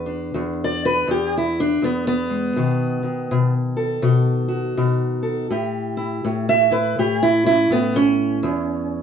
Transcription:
0.00 0.33 E2 medium
0.00 0.64 B4 soft
0.06 1.57 D4 soft
0.34 1.06 E2 medium
0.64 0.85 D5 loud
0.85 1.09 B4 loud
1.07 1.81 E2 medium
1.07 1.34 G4 medium
1.37 1.59 E4 medium
1.60 1.83 D4 medium
1.82 2.55 E2 medium
1.82 2.06 B3 medium
2.07 3.54 B3 loud
2.30 2.53 G#3 soft
2.56 3.29 B2 medium
2.56 3.01 D#3 medium
3.03 5.47 D#3 soft
3.31 4.01 B2 medium
3.77 5.21 A4 soft
4.02 4.76 B2 medium
4.02 4.76 D#4 medium
4.48 5.46 F#4 soft
4.77 5.47 B2 medium
4.77 5.46 D#4 soft
5.23 5.47 A4 soft
5.50 6.23 A2 medium
5.50 6.72 G4 soft
5.97 6.70 E4 soft
6.25 6.97 A2 medium
6.49 6.72 E5 loud
6.71 7.21 E4 soft
6.71 6.96 B4 loud
6.99 7.69 A2 medium
6.99 7.22 G4 medium
7.23 7.45 E4 loud
7.44 7.95 C#4 soft
7.44 7.70 E4 loud
7.70 8.43 A2 medium
7.70 7.95 B3 loud
7.96 9.02 C#4 loud
8.43 9.02 E2 medium

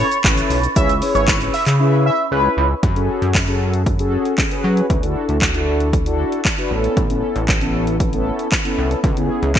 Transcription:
0.00 0.18 C#5 medium
0.00 2.79 B5 medium
0.00 2.79 C#6 medium
0.00 0.74 A6 medium
0.12 closed hi-hat soft
0.12 shaker medium
0.24 0.42 A1 loud
0.24 0.59 C#4 medium
0.24 0.59 E4 medium
0.24 0.59 A4 medium
0.24 0.59 B4 medium
0.24 0.59 C#5 medium
0.24 kick loud
0.24 clap loud
0.24 closed hi-hat medium
0.24 tambourine medium
0.24 shaker medium
0.38 closed hi-hat medium
0.38 shaker medium
0.50 0.68 B1 loud
0.50 open hi-hat medium
0.50 shaker medium
0.64 closed hi-hat soft
0.64 shaker medium
0.76 1.02 C#2 loud
0.76 0.93 C#4 medium
0.76 0.93 E4 medium
0.76 0.93 G#4 medium
0.76 0.93 B4 medium
0.76 0.93 C#5 loud
0.76 0.96 E5 loud
0.76 2.81 E6 medium
0.76 kick loud
0.76 closed hi-hat medium
0.76 shaker medium
0.89 closed hi-hat medium
0.89 shaker medium
1.02 1.54 C#4 medium
1.02 1.54 E4 medium
1.02 1.54 G#4 medium
1.02 1.54 B4 medium
1.02 1.54 C#5 loud
1.02 open hi-hat medium
1.02 shaker medium
1.15 1.50 G#1 medium
1.15 1.34 C#5 medium
1.15 closed hi-hat soft
1.15 shaker medium
1.28 kick loud
1.28 clap loud
1.28 closed hi-hat medium
1.28 tambourine loud
1.28 shaker medium
1.41 closed hi-hat medium
1.41 shaker medium
1.54 1.64 E5 medium
1.54 open hi-hat medium
1.54 shaker soft
1.67 2.10 C#3 medium
1.67 clap medium
1.67 closed hi-hat medium
1.67 shaker medium
1.80 2.14 C#4 medium
1.80 2.14 E4 medium
1.80 2.14 G#4 medium
1.80 2.14 B4 medium
1.80 2.14 E5 loud
2.06 2.25 E5 medium
2.31 2.49 C#2 medium
2.31 2.66 C#4 medium
2.31 2.66 E4 medium
2.31 2.66 G#4 medium
2.31 2.66 B4 medium
2.31 2.68 B4 medium
2.31 2.66 C#5 medium
2.57 2.75 C#2 loud
2.83 3.09 F#2 loud
2.83 kick loud
2.83 closed hi-hat medium
2.96 3.30 C#4 medium
2.96 3.30 F#4 medium
2.96 3.31 G#4 medium
2.96 3.31 A4 medium
2.96 closed hi-hat medium
3.22 4.18 F#2 medium
3.22 closed hi-hat soft
3.35 kick loud
3.35 clap loud
3.35 closed hi-hat medium
3.48 3.82 C#4 medium
3.48 3.82 F#4 medium
3.48 3.82 G#4 medium
3.48 3.82 A4 loud
3.48 closed hi-hat soft
3.74 closed hi-hat medium
3.86 kick loud
3.86 closed hi-hat medium
3.99 4.34 C#4 loud
3.99 4.34 F#4 medium
3.99 4.34 G#4 medium
3.99 4.34 A4 loud
3.99 closed hi-hat medium
4.25 closed hi-hat soft
4.38 kick loud
4.38 clap loud
4.38 closed hi-hat medium
4.51 4.86 C#4 medium
4.51 4.86 F#4 medium
4.51 4.86 G#4 medium
4.51 4.86 B4 loud
4.51 closed hi-hat medium
4.64 4.81 F#3 loud
4.77 closed hi-hat soft
4.90 5.16 D2 loud
4.90 kick loud
4.90 closed hi-hat medium
5.03 5.37 D4 medium
5.03 5.37 E4 medium
5.03 5.37 F#4 medium
5.03 5.37 A4 medium
5.03 closed hi-hat medium
5.29 6.24 D2 medium
5.29 closed hi-hat soft
5.41 kick loud
5.41 clap loud
5.41 closed hi-hat medium
5.54 5.89 D4 medium
5.54 5.89 E4 medium
5.54 5.89 F#4 medium
5.54 5.89 A4 loud
5.54 closed hi-hat soft
5.80 closed hi-hat medium
5.93 kick loud
5.93 closed hi-hat medium
6.06 6.41 D4 medium
6.06 6.41 E4 medium
6.06 6.41 F#4 medium
6.06 6.41 A4 loud
6.06 closed hi-hat medium
6.32 closed hi-hat soft
6.45 kick loud
6.45 clap loud
6.45 closed hi-hat medium
6.58 6.71 D4 loud
6.58 6.70 E4 medium
6.58 6.71 F#4 medium
6.58 6.71 B4 loud
6.58 closed hi-hat medium
6.71 6.88 A1 loud
6.71 7.02 B3 medium
6.71 7.02 C#4 medium
6.71 7.02 E4 medium
6.71 7.02 A4 loud
6.84 closed hi-hat soft
6.97 7.23 A1 loud
6.97 kick loud
6.97 closed hi-hat medium
7.10 7.44 B3 medium
7.10 7.44 C#4 medium
7.10 7.44 E4 medium
7.10 7.44 A4 loud
7.10 closed hi-hat medium
7.36 8.31 A1 medium
7.36 closed hi-hat soft
7.48 kick loud
7.48 clap loud
7.48 closed hi-hat medium
7.61 7.96 B3 loud
7.61 7.96 C#4 medium
7.61 7.96 E4 medium
7.61 7.96 A4 loud
7.61 closed hi-hat soft
7.87 closed hi-hat medium
8.00 kick loud
8.00 closed hi-hat medium
8.13 8.48 B3 loud
8.13 8.48 C#4 medium
8.13 8.48 E4 medium
8.13 8.48 A4 loud
8.13 closed hi-hat medium
8.39 closed hi-hat soft
8.52 kick loud
8.52 clap loud
8.52 closed hi-hat medium
8.65 8.99 B3 loud
8.65 8.99 C#4 medium
8.65 8.99 E4 medium
8.65 8.99 A4 loud
8.65 closed hi-hat medium
8.78 8.95 C2 medium
8.91 closed hi-hat soft
9.04 9.30 C#2 loud
9.04 kick loud
9.04 closed hi-hat medium
9.17 9.51 B3 medium
9.17 9.51 C#4 medium
9.17 9.51 E4 medium
9.17 9.51 G#4 medium
9.17 closed hi-hat medium
9.43 9.59 C#2 medium
9.43 closed hi-hat soft
9.55 kick loud
9.55 clap loud
9.55 closed hi-hat medium

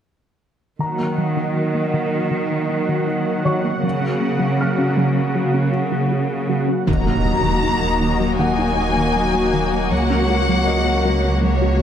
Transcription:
0.79 0.91 D#3 medium
0.79 3.80 D#3 soft
0.79 6.84 F#3 soft
0.79 6.84 A#3 soft
0.79 6.84 F#4 soft
0.79 6.84 F#5 soft
0.79 3.04 A#5 soft
0.99 1.10 A#3 soft
1.18 1.29 F#3 soft
1.37 1.48 D#3 medium
1.74 1.86 A#3 soft
1.94 2.05 D#3 medium
2.31 2.43 D#3 medium
2.51 2.62 A#3 soft
2.69 2.81 D#4 soft
2.89 3.00 D#3 medium
3.07 3.19 D#4 soft
3.45 3.57 D#3 medium
3.45 5.69 C#5 soft
3.45 5.69 C#6 soft
3.64 3.76 A#3 soft
3.83 6.63 C#3 soft
3.83 3.95 F#3 medium
4.02 4.13 C#4 soft
4.21 4.33 A#3 soft
4.39 4.51 F#3 medium
4.61 6.84 F6 soft
4.78 4.90 C#4 soft
4.97 5.09 F#3 medium
5.35 5.47 F#3 medium
5.54 5.66 C#4 soft
5.73 5.84 F#4 soft
5.92 6.03 F#3 medium
6.11 6.23 F#4 soft
6.49 6.61 F#3 medium
6.68 6.80 C#4 soft
6.87 9.93 D#1 medium
6.87 9.87 D#2 soft
6.87 6.99 D#3 medium
6.87 11.82 F#3 medium
6.87 11.82 A#3 soft
6.87 11.82 F#4 medium
6.87 11.82 F#4 soft
6.87 9.88 D#5 medium
6.87 8.36 A#5 medium
6.87 impact soft
7.06 7.18 A#3 soft
7.25 7.37 D#4 soft
7.44 7.56 D#3 medium
7.63 7.75 D#4 soft
7.82 7.94 F#3 soft
8.01 8.13 D#3 medium
8.20 8.32 F#3 soft
8.39 8.51 D#3 medium
8.39 10.63 F#4 soft
8.39 10.63 F#5 soft
8.39 9.91 G#5 medium
8.59 8.70 D#4 soft
8.78 8.89 F#3 medium
8.97 9.08 D#3 medium
9.16 9.27 F#3 soft
9.35 9.46 A#3 medium
9.54 9.65 D#3 medium
9.91 11.82 C#2 medium
9.91 11.82 C#2 soft
9.91 10.03 F#3 medium
9.91 11.82 C#5 medium
9.91 11.43 F#5 medium
10.10 10.22 C#4 soft
10.30 10.41 F#4 soft
10.49 10.60 F#3 medium
10.66 10.79 F#4 soft
10.66 11.82 D#5 soft
10.87 10.98 A#3 soft
11.05 11.17 F#3 medium
11.24 11.36 A#3 soft
11.43 11.54 F#3 medium
11.43 11.82 C#5 medium
11.62 11.73 F#4 soft

